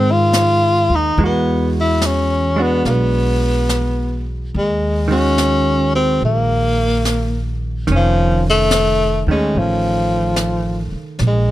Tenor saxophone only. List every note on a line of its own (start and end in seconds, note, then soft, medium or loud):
0.00 0.13 C4 medium
0.12 0.96 F4 medium
0.95 1.21 D#4 medium
1.25 1.73 B3 medium
1.80 2.08 E4 medium
2.06 2.63 C#4 medium
2.62 2.83 B3 medium
2.86 2.91 A#3 soft
2.86 4.28 B3 medium
4.58 5.08 G#3 medium
5.11 5.91 C#4 medium
5.95 6.21 C4 medium
6.25 7.58 A#3 medium
7.95 8.43 F3 medium
8.49 9.25 A3 medium
9.31 9.60 G#3 medium
9.59 10.93 F3 medium
11.27 11.51 G#3 medium